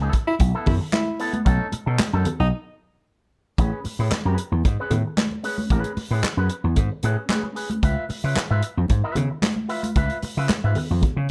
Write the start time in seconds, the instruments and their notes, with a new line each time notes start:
0.01 clean electric guitar B3 E4 A4
0.13 muted clean electric guitar stroke, kick, closed hi-hat
0.27 tenor saxophone E4, muted clean electric guitar stroke
0.39 slap bass B1, muted clean electric guitar stroke, kick, closed hi-hat, muted conga
0.54 clean electric guitar B3 E4 A4
0.66 slap bass F#2, tenor saxophone E4, muted clean electric guitar stroke, kick, open hi-hat, low conga
0.81 muted clean electric guitar stroke
0.93 tenor saxophone E4, muted clean electric guitar stroke, snare, clap, closed hi-hat, high conga
1.08 muted clean electric guitar stroke
1.19 clean electric guitar B3 E4 A4, open hi-hat
1.33 muted clean electric guitar stroke, closed hi-hat, high conga
1.45 slap bass B1, clean electric guitar C#4 D#4 A4, kick, closed hi-hat
1.72 muted clean electric guitar stroke, muted slap bass stroke, closed hi-hat, muted conga
1.86 slap bass B2, clean electric guitar C#4 D#4 A4
1.99 muted slap bass stroke, muted clean electric guitar stroke, snare, clap, closed hi-hat, high conga
2.13 slap bass F#2, clean electric guitar C#4 D#4 A4
2.25 muted clean electric guitar stroke, closed hi-hat, low conga
2.40 slap bass B1, tenor saxophone D#4, muted clean electric guitar stroke
3.58 slap bass A1, clean electric guitar C#4 G#4 B4, kick, closed hi-hat
3.84 muted clean electric guitar stroke, muted slap bass stroke, open hi-hat, muted conga
3.99 slap bass A2, clean electric guitar C#4 G#4 B4
4.11 muted slap bass stroke, muted clean electric guitar stroke, snare, clap, closed hi-hat, high conga
4.25 slap bass F#2, clean electric guitar C#4 G#4 B4
4.38 muted clean electric guitar stroke, closed hi-hat
4.52 slap bass E2, muted clean electric guitar stroke
4.64 slap bass G#2, muted clean electric guitar stroke, kick, closed hi-hat, muted conga
4.80 clean electric guitar C#4 G#4 B4
4.90 slap bass A2, muted clean electric guitar stroke, closed hi-hat, low conga
5.06 muted clean electric guitar stroke
5.17 muted clean electric guitar stroke, snare, clap, closed hi-hat, high conga
5.31 muted clean electric guitar stroke, high conga
5.43 clean electric guitar C#4 G#4 B4, open hi-hat
5.58 muted clean electric guitar stroke, high conga
5.70 slap bass A1, clean electric guitar C#4 G#4 B4, kick, closed hi-hat
5.84 closed hi-hat
5.97 muted slap bass stroke, muted clean electric guitar stroke, open hi-hat, muted conga
6.11 slap bass A2, clean electric guitar C#4 G#4 B4
6.23 muted slap bass stroke, muted clean electric guitar stroke, snare, clap, closed hi-hat, high conga
6.37 slap bass F#2, clean electric guitar C#4 G#4 B4
6.49 muted clean electric guitar stroke, closed hi-hat
6.64 slap bass E2, muted clean electric guitar stroke
6.76 slap bass G#2, kick, closed hi-hat, muted conga, low conga
6.92 muted clean electric guitar stroke
7.03 slap bass A2, clean electric guitar C#4 G#4 B4, closed hi-hat, muted conga
7.17 muted clean electric guitar stroke
7.29 clean electric guitar C#4 G#4 B4, snare, clap, closed hi-hat, high conga
7.43 muted clean electric guitar stroke, high conga
7.55 clean electric guitar C#4 G#4 B4, open hi-hat
7.70 muted clean electric guitar stroke, closed hi-hat, high conga
7.83 slap bass C#2, clean electric guitar F4 B4 E5, kick, closed hi-hat
8.09 muted clean electric guitar stroke, muted slap bass stroke, open hi-hat, muted conga
8.24 slap bass C#3, clean electric guitar F4 B4 E5
8.36 muted clean electric guitar stroke, muted slap bass stroke, snare, clap, closed hi-hat, high conga
8.51 slap bass G#2, clean electric guitar F4 B4 E5
8.62 muted clean electric guitar stroke, closed hi-hat
8.77 slap bass F2, muted clean electric guitar stroke
8.88 slap bass G#2, muted clean electric guitar stroke, kick, closed hi-hat, muted conga
9.04 clean electric guitar F4 B4 E5
9.15 slap bass C#3, muted clean electric guitar stroke, closed hi-hat, muted conga, low conga
9.31 muted clean electric guitar stroke
9.42 muted clean electric guitar stroke, snare, clap, closed hi-hat, high conga
9.56 muted clean electric guitar stroke, high conga
9.69 clean electric guitar F4 B4 E5, open hi-hat
9.83 muted clean electric guitar stroke, closed hi-hat, high conga
9.96 slap bass C#2, clean electric guitar F4 B4 E5, kick, closed hi-hat
10.10 closed hi-hat
10.22 muted slap bass stroke, muted clean electric guitar stroke, open hi-hat, muted conga
10.37 slap bass C#3, clean electric guitar F4 B4 E5
10.49 muted slap bass stroke, muted clean electric guitar stroke, snare, clap, closed hi-hat, high conga
10.64 slap bass G#2, clean electric guitar F4 B4 E5
10.75 muted clean electric guitar stroke, open hi-hat, low conga
10.91 slap bass F2, muted clean electric guitar stroke
11.01 kick, closed hi-hat, muted conga, low conga
11.17 slap bass C#3, muted clean electric guitar stroke